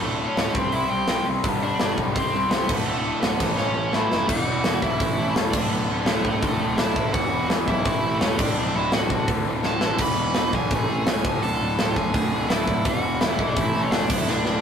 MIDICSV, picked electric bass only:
0, 0, Header, 1, 2, 480
1, 0, Start_track
1, 0, Tempo, 356718
1, 23, Time_signature, 4, 2, 24, 8
1, 19662, End_track
2, 0, Start_track
2, 0, Title_t, "Picked electric bass"
2, 0, Program_c, 0, 34
2, 18, Note_on_c, 0, 26, 94
2, 329, Note_off_c, 0, 26, 0
2, 497, Note_on_c, 0, 26, 86
2, 653, Note_off_c, 0, 26, 0
2, 733, Note_on_c, 0, 36, 87
2, 891, Note_off_c, 0, 36, 0
2, 981, Note_on_c, 0, 36, 92
2, 1136, Note_off_c, 0, 36, 0
2, 1230, Note_on_c, 0, 36, 83
2, 1382, Note_off_c, 0, 36, 0
2, 1461, Note_on_c, 0, 36, 101
2, 1616, Note_off_c, 0, 36, 0
2, 1711, Note_on_c, 0, 36, 87
2, 1863, Note_off_c, 0, 36, 0
2, 1936, Note_on_c, 0, 31, 97
2, 2248, Note_off_c, 0, 31, 0
2, 2427, Note_on_c, 0, 31, 78
2, 2581, Note_off_c, 0, 31, 0
2, 2665, Note_on_c, 0, 35, 86
2, 2905, Note_off_c, 0, 35, 0
2, 2905, Note_on_c, 0, 36, 83
2, 3059, Note_off_c, 0, 36, 0
2, 3148, Note_on_c, 0, 36, 72
2, 3301, Note_off_c, 0, 36, 0
2, 3387, Note_on_c, 0, 36, 99
2, 3540, Note_off_c, 0, 36, 0
2, 3621, Note_on_c, 0, 26, 80
2, 3776, Note_off_c, 0, 26, 0
2, 3873, Note_on_c, 0, 26, 97
2, 4179, Note_off_c, 0, 26, 0
2, 4350, Note_on_c, 0, 26, 85
2, 4502, Note_off_c, 0, 26, 0
2, 4583, Note_on_c, 0, 33, 87
2, 4737, Note_off_c, 0, 33, 0
2, 4844, Note_on_c, 0, 33, 87
2, 4991, Note_off_c, 0, 33, 0
2, 5078, Note_on_c, 0, 33, 81
2, 5227, Note_off_c, 0, 33, 0
2, 5311, Note_on_c, 0, 33, 97
2, 5462, Note_off_c, 0, 33, 0
2, 5544, Note_on_c, 0, 30, 80
2, 5697, Note_off_c, 0, 30, 0
2, 5774, Note_on_c, 0, 28, 102
2, 6236, Note_off_c, 0, 28, 0
2, 6264, Note_on_c, 0, 28, 87
2, 6485, Note_off_c, 0, 28, 0
2, 6493, Note_on_c, 0, 35, 93
2, 6725, Note_off_c, 0, 35, 0
2, 6730, Note_on_c, 0, 33, 92
2, 6960, Note_off_c, 0, 33, 0
2, 6968, Note_on_c, 0, 33, 89
2, 7202, Note_off_c, 0, 33, 0
2, 7211, Note_on_c, 0, 28, 91
2, 7446, Note_off_c, 0, 28, 0
2, 7446, Note_on_c, 0, 26, 84
2, 7681, Note_off_c, 0, 26, 0
2, 7697, Note_on_c, 0, 26, 92
2, 7926, Note_off_c, 0, 26, 0
2, 7933, Note_on_c, 0, 26, 99
2, 8164, Note_off_c, 0, 26, 0
2, 8176, Note_on_c, 0, 26, 84
2, 8634, Note_off_c, 0, 26, 0
2, 8645, Note_on_c, 0, 38, 95
2, 8879, Note_off_c, 0, 38, 0
2, 8891, Note_on_c, 0, 26, 86
2, 9119, Note_off_c, 0, 26, 0
2, 9127, Note_on_c, 0, 26, 91
2, 9360, Note_off_c, 0, 26, 0
2, 9367, Note_on_c, 0, 33, 99
2, 9600, Note_off_c, 0, 33, 0
2, 9611, Note_on_c, 0, 28, 109
2, 10071, Note_off_c, 0, 28, 0
2, 10095, Note_on_c, 0, 28, 96
2, 10323, Note_off_c, 0, 28, 0
2, 10331, Note_on_c, 0, 35, 95
2, 10561, Note_off_c, 0, 35, 0
2, 10569, Note_on_c, 0, 33, 87
2, 10801, Note_off_c, 0, 33, 0
2, 10808, Note_on_c, 0, 33, 78
2, 11031, Note_off_c, 0, 33, 0
2, 11039, Note_on_c, 0, 28, 101
2, 11275, Note_off_c, 0, 28, 0
2, 11289, Note_on_c, 0, 26, 85
2, 11516, Note_off_c, 0, 26, 0
2, 11524, Note_on_c, 0, 26, 101
2, 11758, Note_off_c, 0, 26, 0
2, 11775, Note_on_c, 0, 26, 91
2, 12004, Note_off_c, 0, 26, 0
2, 12010, Note_on_c, 0, 26, 87
2, 12471, Note_off_c, 0, 26, 0
2, 12493, Note_on_c, 0, 38, 90
2, 12723, Note_off_c, 0, 38, 0
2, 12738, Note_on_c, 0, 26, 82
2, 12962, Note_off_c, 0, 26, 0
2, 12970, Note_on_c, 0, 26, 90
2, 13201, Note_off_c, 0, 26, 0
2, 13209, Note_on_c, 0, 33, 89
2, 13431, Note_off_c, 0, 33, 0
2, 13439, Note_on_c, 0, 28, 99
2, 13906, Note_off_c, 0, 28, 0
2, 13934, Note_on_c, 0, 28, 79
2, 14159, Note_off_c, 0, 28, 0
2, 14167, Note_on_c, 0, 35, 85
2, 14400, Note_off_c, 0, 35, 0
2, 14409, Note_on_c, 0, 33, 94
2, 14641, Note_off_c, 0, 33, 0
2, 14660, Note_on_c, 0, 33, 86
2, 14887, Note_off_c, 0, 33, 0
2, 14900, Note_on_c, 0, 37, 93
2, 15127, Note_off_c, 0, 37, 0
2, 15138, Note_on_c, 0, 26, 82
2, 15366, Note_off_c, 0, 26, 0
2, 15378, Note_on_c, 0, 26, 102
2, 15606, Note_off_c, 0, 26, 0
2, 15617, Note_on_c, 0, 26, 95
2, 15846, Note_off_c, 0, 26, 0
2, 15872, Note_on_c, 0, 26, 91
2, 16324, Note_off_c, 0, 26, 0
2, 16339, Note_on_c, 0, 38, 98
2, 16567, Note_off_c, 0, 38, 0
2, 16584, Note_on_c, 0, 26, 83
2, 16810, Note_off_c, 0, 26, 0
2, 16826, Note_on_c, 0, 26, 105
2, 17047, Note_off_c, 0, 26, 0
2, 17055, Note_on_c, 0, 26, 85
2, 17285, Note_off_c, 0, 26, 0
2, 17295, Note_on_c, 0, 28, 98
2, 17755, Note_off_c, 0, 28, 0
2, 17782, Note_on_c, 0, 28, 82
2, 18009, Note_off_c, 0, 28, 0
2, 18017, Note_on_c, 0, 35, 86
2, 18246, Note_off_c, 0, 35, 0
2, 18253, Note_on_c, 0, 33, 93
2, 18485, Note_off_c, 0, 33, 0
2, 18498, Note_on_c, 0, 33, 76
2, 18727, Note_off_c, 0, 33, 0
2, 18739, Note_on_c, 0, 28, 100
2, 18969, Note_off_c, 0, 28, 0
2, 18969, Note_on_c, 0, 26, 85
2, 19203, Note_off_c, 0, 26, 0
2, 19233, Note_on_c, 0, 26, 98
2, 19455, Note_off_c, 0, 26, 0
2, 19470, Note_on_c, 0, 26, 92
2, 19662, Note_off_c, 0, 26, 0
2, 19662, End_track
0, 0, End_of_file